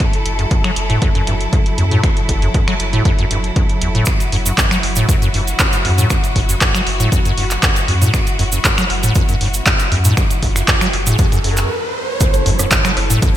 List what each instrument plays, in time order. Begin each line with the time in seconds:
Already playing: string section F#3 E4 A4
0.00 acid bass F#2, finger snap, kick, closed hi-hat
0.13 closed hi-hat
0.26 sub bass F#1, closed hi-hat
0.39 acid bass F#2, closed hi-hat
0.51 acid bass F#2, kick, closed hi-hat
0.64 acid bass F#3, finger snap, closed hi-hat
0.76 sub bass F#1, closed hi-hat
0.90 acid bass A2, closed hi-hat
1.02 acid bass F#2, kick, closed hi-hat
1.15 acid bass F#2, closed hi-hat
1.27 sub bass F#1, acid bass G2, closed hi-hat
1.41 closed hi-hat
1.53 acid bass F#2, kick, closed hi-hat
1.66 closed hi-hat
1.78 acid bass E2, sub bass F#2, closed hi-hat
1.91 acid bass A2, closed hi-hat
2.04 acid bass F#2, finger snap, kick, closed hi-hat
2.17 closed hi-hat
2.29 sub bass F#1, kick, closed hi-hat
2.42 acid bass F#2, closed hi-hat
2.54 acid bass F#2, kick, closed hi-hat
2.68 acid bass F#3, finger snap, closed hi-hat
2.80 sub bass F#1, closed hi-hat
2.93 acid bass A2, closed hi-hat
3.05 acid bass F#2, kick, closed hi-hat
3.19 acid bass F#2, closed hi-hat
3.31 sub bass F#1, acid bass G2, closed hi-hat
3.44 closed hi-hat
3.56 acid bass F#2, kick, closed hi-hat
3.69 closed hi-hat
3.82 sub bass F#1, acid bass E2, closed hi-hat
3.95 acid bass A2, closed hi-hat
4.05 acid bass F#2, string section F#4, finger snap, kick, closed hi-hat, cabasa
4.20 closed hi-hat, cabasa
4.32 sub bass F#1, acid bass F#2, open hi-hat
4.46 acid bass F#2, closed hi-hat, cabasa
4.58 acid bass F#2, kick, clap, closed hi-hat, cabasa
4.71 acid bass F#3, finger snap, closed hi-hat, cabasa
4.83 sub bass F#1, open hi-hat
4.96 acid bass A2, closed hi-hat, cabasa
5.09 acid bass F#2, kick, closed hi-hat, cabasa
5.22 acid bass F#2, closed hi-hat, cabasa
5.34 sub bass F#1, acid bass G2, open hi-hat
5.47 closed hi-hat, cabasa
5.59 acid bass F#2, kick, clap, closed hi-hat, cabasa
5.73 closed hi-hat, cabasa
5.85 acid bass E2, sub bass F#2, open hi-hat
5.98 acid bass A2, closed hi-hat, cabasa
6.10 acid bass F#2, finger snap, kick, closed hi-hat, cabasa
6.24 closed hi-hat, cabasa
6.36 sub bass F#1, acid bass F#2, kick, open hi-hat
6.49 acid bass F#2, closed hi-hat, cabasa
6.61 acid bass F#2, kick, clap, closed hi-hat, cabasa
6.74 acid bass F#3, finger snap, closed hi-hat, cabasa
6.87 sub bass F#1, open hi-hat
7.00 acid bass A2, closed hi-hat, cabasa
7.12 acid bass F#2, kick, closed hi-hat, cabasa
7.25 acid bass F#2, closed hi-hat, cabasa
7.38 sub bass F#1, acid bass G2, open hi-hat
7.50 clap, closed hi-hat, cabasa
7.63 acid bass F#2, kick, clap, closed hi-hat, cabasa
7.76 closed hi-hat, cabasa
7.88 acid bass E2, sub bass F#2, open hi-hat
8.02 acid bass A2, closed hi-hat, cabasa
8.14 acid bass F#2, finger snap, kick, closed hi-hat, riser, cabasa
8.27 closed hi-hat, cabasa
8.39 sub bass F#1, acid bass F#2, open hi-hat
8.52 acid bass F#2, closed hi-hat, cabasa
8.65 acid bass F#2, kick, clap, closed hi-hat, cabasa
8.78 acid bass F#3, finger snap, closed hi-hat, cabasa
8.90 sub bass F#1, open hi-hat
9.03 acid bass A2, closed hi-hat, cabasa
9.15 acid bass F#2, kick, closed hi-hat, cabasa
9.29 acid bass F#2, closed hi-hat, cabasa
9.41 sub bass F#1, acid bass G2, open hi-hat
9.54 closed hi-hat, cabasa
9.66 acid bass F#2, kick, clap, closed hi-hat, cabasa
9.79 closed hi-hat, cabasa
9.92 acid bass E2, sub bass F#2, open hi-hat
10.04 acid bass A2, closed hi-hat, cabasa
10.17 acid bass F#2, finger snap, kick, closed hi-hat, cabasa
10.30 closed hi-hat, cabasa
10.42 sub bass F#1, acid bass F#2, kick, open hi-hat
10.56 acid bass F#2, finger snap, closed hi-hat, cabasa
10.68 acid bass F#2, kick, clap, closed hi-hat, cabasa
10.81 acid bass F#3, finger snap, closed hi-hat, cabasa
10.93 sub bass F#1, open hi-hat
11.06 acid bass A2, closed hi-hat, cabasa
11.18 acid bass F#2, kick, closed hi-hat, cabasa
11.32 acid bass F#2, closed hi-hat, cabasa
11.44 sub bass F#1, acid bass F#2, open hi-hat
11.57 clap, closed hi-hat, cabasa
12.20 acid bass F#2, string section F#3 E4 A4, kick, closed hi-hat, impact, cabasa
12.34 closed hi-hat, cabasa
12.46 sub bass F#1, acid bass F#2, open hi-hat
12.59 acid bass F#2, cross-stick, closed hi-hat, cabasa
12.71 acid bass F#2, kick, clap, closed hi-hat, cabasa
12.85 acid bass F#3, finger snap, closed hi-hat, cabasa
12.97 sub bass F#1, cross-stick, open hi-hat
13.10 acid bass A2, closed hi-hat, cabasa
13.22 acid bass F#2, kick, closed hi-hat, cabasa